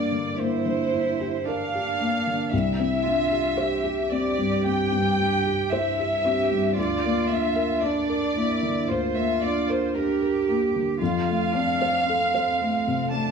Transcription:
Already playing: G2 A#3 D4 G4 A#4 D5
0.12 D3
0.38 A#3 E4 C5
0.65 D3
0.93 D4
1.20 G4
1.45 D4 A#4 F5
1.74 G4
2.00 A#3
2.27 D3
2.51 C2 E4 E5
2.79 C4
3.04 D4 F4
3.31 G4
3.57 G4 C5
3.84 G4
4.11 C4 G4 D5
4.38 G2
4.65 C4 G5
4.92 G2
5.19 D4
5.46 G4
5.72 E4 C5 E5
5.99 G4
6.25 C4 G4
6.51 G2
6.77 D2 F4 D5
7.04 A#3
7.30 D4 E5
7.56 A#4
7.82 D4 D5
8.09 A#4
8.36 A#3 E4
8.63 D3
8.89 D2 F4 C5
9.16 A#3 E5
9.42 D4 D5
9.69 A#4 C5
9.94 D4 G4 A#4
10.22 A#4
10.49 A#3
10.76 D3
11.01 F2 F4 F5
11.29 A3
11.53 C4 D4
11.82 C5
12.05 C4 A4
12.34 C5
12.61 A3
12.87 C3
13.11 A3 D4 A5

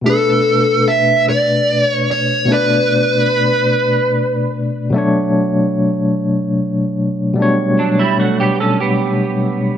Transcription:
0.01 B2 A3
0.06 D4 A4 B4
0.88 E5
1.29 D5
1.85 C#5
2.11 C#5
2.45 B2 A3
2.51 D4 B4 D5
4.90 B2 F#3 A3
4.96 D4 C#5
7.34 B2 G3 A3
7.40 D4 C#5
7.79 F#3 D4
7.99 G3 E4
8.19 A3 F#4
8.40 B3 G4
8.60 C#4 A4
8.80 B3 G4

